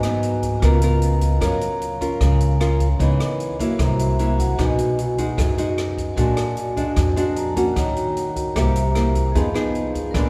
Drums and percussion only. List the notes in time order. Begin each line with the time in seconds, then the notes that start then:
0.03 cross-stick, closed hi-hat
0.23 closed hi-hat
0.43 kick, closed hi-hat
0.62 kick, cross-stick, closed hi-hat
0.82 closed hi-hat
1.02 closed hi-hat
1.21 kick, closed hi-hat
1.41 kick, cross-stick, closed hi-hat
1.61 closed hi-hat
1.82 closed hi-hat
2.01 kick, closed hi-hat
2.21 kick, cross-stick, closed hi-hat
2.40 closed hi-hat
2.61 cross-stick, closed hi-hat
2.80 kick, closed hi-hat
3.00 kick, closed hi-hat
3.20 cross-stick, closed hi-hat
3.40 closed hi-hat
3.60 kick, closed hi-hat
3.79 kick, cross-stick, closed hi-hat
3.99 closed hi-hat
4.19 closed hi-hat
4.39 kick, closed hi-hat
4.59 kick, cross-stick, closed hi-hat
4.78 closed hi-hat
4.99 closed hi-hat
5.18 kick, closed hi-hat
5.38 kick, cross-stick, closed hi-hat
5.58 closed hi-hat
5.78 cross-stick, closed hi-hat
5.98 kick, closed hi-hat
6.17 kick, closed hi-hat
6.37 cross-stick, closed hi-hat
6.57 closed hi-hat
6.77 kick, closed hi-hat
6.96 kick, cross-stick, closed hi-hat
7.17 closed hi-hat
7.36 closed hi-hat
7.57 kick, closed hi-hat
7.76 kick, cross-stick, closed hi-hat
7.96 closed hi-hat
8.17 closed hi-hat
8.36 kick, closed hi-hat
8.56 kick, cross-stick, closed hi-hat
8.76 closed hi-hat
8.95 cross-stick, closed hi-hat
9.15 kick, closed hi-hat
9.35 kick, closed hi-hat
9.55 cross-stick, closed hi-hat
9.75 closed hi-hat
9.95 kick, closed hi-hat
10.14 kick, cross-stick, closed hi-hat